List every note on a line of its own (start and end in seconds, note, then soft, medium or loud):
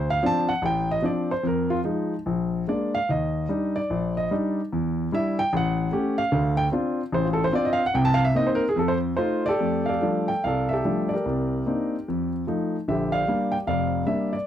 0.00 0.18 D2 medium
0.10 0.23 F5 medium
0.23 0.50 F3 medium
0.23 0.50 C4 medium
0.23 0.51 D4 medium
0.23 0.50 A5 loud
0.49 0.62 F#5 loud
0.62 0.98 A1 medium
0.62 0.90 G5 loud
0.91 1.04 D#5 medium
1.02 1.31 F3 medium
1.02 1.31 C4 soft
1.02 1.31 D4 medium
1.02 1.30 D5 medium
1.31 1.45 C5 medium
1.43 1.79 F2 medium
1.47 1.71 A#4 medium
1.70 1.79 F4 medium
1.84 2.13 F3 medium
1.84 2.13 G#3 soft
1.84 2.13 D#4 medium
2.26 2.62 A#1 medium
2.68 2.96 G#3 medium
2.68 2.97 A#3 soft
2.68 2.97 D4 medium
2.68 2.95 D5 medium
2.95 3.09 F5 medium
3.09 3.45 D#2 medium
3.09 3.74 D#5 medium
3.49 3.78 G3 medium
3.49 3.78 D4 soft
3.49 3.79 D#4 medium
3.76 4.14 D5 medium
3.90 4.26 A#1 medium
4.17 4.31 D#5 medium
4.31 4.59 G3 medium
4.31 4.60 D4 medium
4.31 4.60 D#4 medium
4.73 5.07 E2 medium
5.12 5.40 G3 medium
5.12 5.40 D4 medium
5.12 5.40 E4 medium
5.12 5.39 E5 medium
5.39 5.53 G5 loud
5.53 5.88 A1 medium
5.53 6.17 F#5 medium
5.92 6.20 A3 medium
5.92 6.20 C#4 medium
5.92 6.20 G4 medium
6.18 6.55 F5 loud
6.32 6.67 D2 medium
6.32 6.67 D3 medium
6.57 6.66 G5 loud
6.72 7.00 C4 medium
6.72 7.00 D4 medium
6.72 7.00 F4 medium
7.12 7.48 A1 medium
7.12 7.27 C5 medium
7.25 7.38 F4 soft
7.33 7.43 A4 medium
7.44 7.52 C5 medium
7.52 7.81 C4 medium
7.52 7.81 D4 medium
7.52 7.81 F4 medium
7.52 7.67 D5 loud
7.65 7.79 D#5 medium
7.73 7.83 F5 loud
7.86 7.94 F#5 medium
7.94 8.30 C2 medium
7.94 8.30 C3 medium
7.94 8.08 G5 medium
8.05 8.19 A5 loud
8.14 8.24 F5 loud
8.25 8.33 E5 loud
8.35 8.63 A#3 medium
8.35 8.64 C4 medium
8.35 8.64 D#4 medium
8.35 8.49 D#5 loud
8.47 8.61 C5 medium
8.55 8.66 A#4 loud
8.69 8.76 G#4 medium
8.76 9.13 F2 medium
8.76 8.91 A4 medium
8.88 8.97 C5 medium
9.17 9.47 A3 medium
9.17 9.47 D#4 medium
9.17 9.47 F4 medium
9.17 9.46 C5 medium
9.46 10.26 G4 medium
9.46 9.88 A4 medium
9.46 9.84 D5 loud
9.60 9.96 F2 medium
9.60 9.96 A3 medium
9.86 10.46 A4 medium
9.86 10.45 D5 medium
9.86 10.30 F5 medium
10.02 10.30 F3 soft
10.02 10.31 G3 soft
10.02 10.31 A3 soft
10.02 10.31 D4 medium
10.28 10.44 G5 medium
10.44 10.80 C2 medium
10.44 10.72 A4 medium
10.44 11.07 D5 medium
10.44 10.72 F5 medium
10.69 11.12 E5 medium
10.73 11.12 G4 medium
10.73 11.24 A4 medium
10.85 11.13 F3 soft
10.85 11.13 G3 soft
10.85 11.14 A3 soft
10.85 11.14 D4 medium
11.09 12.28 D5 medium
11.13 12.30 G4 medium
11.13 12.04 A#4 medium
11.25 11.61 C2 medium
11.66 11.95 A#3 medium
11.66 11.95 C4 soft
11.66 11.95 D4 soft
11.66 11.95 D#4 medium
12.08 12.43 F2 medium
12.47 12.75 F3 soft
12.47 12.75 A3 soft
12.47 12.75 D#4 medium
12.88 13.22 A#1 medium
12.88 13.23 D3 medium
12.88 13.64 G4 medium
12.88 13.15 E5 medium
13.12 13.68 D5 medium
13.12 13.54 F5 medium
13.28 13.55 G3 medium
13.28 13.55 A#3 soft
13.28 13.55 D4 medium
13.52 13.57 G5 medium
13.67 14.02 F1 medium
13.67 14.02 F2 medium
13.67 14.31 D5 medium
13.67 14.04 F5 medium
14.06 14.34 G3 medium
14.06 14.35 A#3 medium
14.06 14.35 D4 medium
14.06 14.34 E5 medium
14.33 14.46 D5 medium